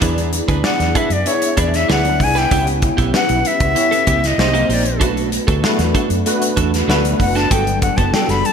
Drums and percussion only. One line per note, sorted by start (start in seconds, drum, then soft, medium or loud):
0.02 kick loud
0.02 closed hi-hat medium
0.18 closed hi-hat soft
0.33 closed hi-hat medium
0.48 kick medium
0.48 closed hi-hat soft
0.64 snare loud
0.80 snare soft
0.80 closed hi-hat soft
0.95 kick medium
0.95 closed hi-hat medium
1.10 closed hi-hat medium
1.26 closed hi-hat medium
1.42 closed hi-hat medium
1.57 kick medium
1.57 closed hi-hat medium
1.74 snare soft
1.74 closed hi-hat medium
1.90 snare loud
2.05 closed hi-hat soft
2.20 kick medium
2.20 open hi-hat medium
2.36 snare soft
2.36 closed hi-hat soft
2.51 kick loud
2.51 closed hi-hat medium
2.67 closed hi-hat medium
2.82 kick loud
2.82 closed hi-hat medium
2.98 kick medium
2.98 closed hi-hat soft
3.14 snare loud
3.29 closed hi-hat soft
3.45 closed hi-hat medium
3.60 kick medium
3.60 closed hi-hat medium
3.76 closed hi-hat medium
3.92 closed hi-hat medium
4.07 kick medium
4.07 closed hi-hat medium
4.24 snare soft
4.24 closed hi-hat medium
4.39 snare loud
4.55 closed hi-hat soft
4.70 open hi-hat medium
4.86 closed hi-hat soft
5.01 kick medium
5.01 closed hi-hat medium
5.17 closed hi-hat soft
5.32 closed hi-hat medium
5.48 kick loud
5.48 closed hi-hat medium
5.64 snare loud
5.79 snare soft
5.79 closed hi-hat medium
5.95 kick medium
5.95 closed hi-hat medium
6.10 closed hi-hat medium
6.26 closed hi-hat medium
6.42 closed hi-hat medium
6.57 kick medium
6.57 closed hi-hat medium
6.74 snare soft
6.74 closed hi-hat medium
6.90 snare loud
7.05 closed hi-hat medium
7.20 kick medium
7.20 open hi-hat medium
7.36 snare soft
7.36 closed hi-hat soft
7.51 kick loud
7.51 closed hi-hat medium
7.67 closed hi-hat soft
7.82 kick medium
7.82 closed hi-hat medium
7.98 kick medium
7.98 closed hi-hat soft
8.14 snare loud
8.29 snare soft
8.29 closed hi-hat soft
8.45 closed hi-hat medium